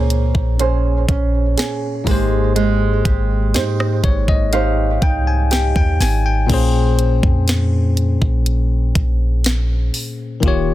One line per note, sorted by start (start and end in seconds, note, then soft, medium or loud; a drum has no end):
0.00 0.32 C#2 loud
0.00 2.01 A#2 medium
0.00 2.02 A#3 medium
0.00 2.06 A#3 medium
0.00 0.58 C#4 medium
0.00 2.03 C#4 medium
0.00 0.59 G#4 medium
0.00 2.04 G#4 medium
0.00 0.60 C5 medium
0.00 2.08 C5 medium
0.10 closed hi-hat medium
0.35 1.06 A#1 loud
0.35 kick medium
0.59 1.07 C#4 medium
0.59 1.57 G#4 medium
0.59 3.55 C5 medium
0.59 closed hi-hat medium
1.09 1.56 A#1 loud
1.09 2.17 C#4 medium
1.09 kick loud
1.09 closed hi-hat medium
1.57 3.05 G#4 medium
1.57 snare loud
1.57 closed hi-hat medium
2.04 3.01 G#1 loud
2.04 5.95 G#2 medium
2.04 5.96 G#3 medium
2.04 2.55 G#3 medium
2.04 5.97 A#3 medium
2.04 kick loud
2.04 open hi-hat medium
2.09 5.98 G4 medium
2.09 5.98 C5 medium
2.56 6.49 G#3 medium
2.56 closed hi-hat medium
3.05 3.56 G#1 loud
3.05 3.54 G4 medium
3.05 kick loud
3.05 closed hi-hat medium
3.54 4.01 G#2 loud
3.54 4.52 D#4 medium
3.54 4.52 G4 medium
3.54 4.54 C5 medium
3.54 snare loud
3.54 closed hi-hat medium
3.80 cross-stick loud
4.04 4.98 G#1 loud
4.04 4.27 C#5 medium
4.04 kick loud
4.04 closed hi-hat medium
4.28 4.51 D#5 medium
4.28 kick medium
4.53 5.01 D#4 medium
4.53 5.50 G4 medium
4.53 7.10 C5 medium
4.53 4.99 F5 medium
4.53 closed hi-hat medium
5.02 5.73 C2 loud
5.02 6.59 D#4 medium
5.02 5.25 G5 medium
5.02 kick loud
5.02 closed hi-hat medium
5.27 5.50 G#5 medium
5.51 6.59 G4 medium
5.51 5.75 G5 medium
5.51 snare loud
5.51 closed hi-hat medium
5.76 5.99 D#2 loud
5.76 6.00 G5 medium
5.76 kick medium
6.00 6.47 G#1 loud
6.00 6.46 G#5 medium
6.00 snare medium
6.00 open hi-hat medium
6.26 6.72 G5 medium
6.47 7.20 A#1 loud
6.47 10.37 A#2 medium
6.47 10.38 A#3 medium
6.47 10.39 C#4 medium
6.47 kick loud
6.47 closed hi-hat medium
6.47 crash loud
6.52 10.40 G#4 medium
6.52 10.41 C5 medium
6.99 closed hi-hat medium
7.23 8.18 F2 loud
7.23 kick loud
7.48 snare loud
7.48 closed hi-hat medium
7.97 closed hi-hat medium
8.22 8.93 A#1 medium
8.22 kick medium
8.46 closed hi-hat medium
8.95 9.90 A#1 loud
8.95 kick loud
8.95 closed hi-hat medium
9.44 snare loud
9.44 closed hi-hat medium
9.94 open hi-hat medium
10.40 10.74 D#1 loud
10.40 10.74 D#3 medium
10.40 10.74 A#3 medium
10.40 10.74 F4 medium
10.40 kick loud
10.40 closed hi-hat medium
10.46 10.74 G4 medium
10.46 10.74 C#5 medium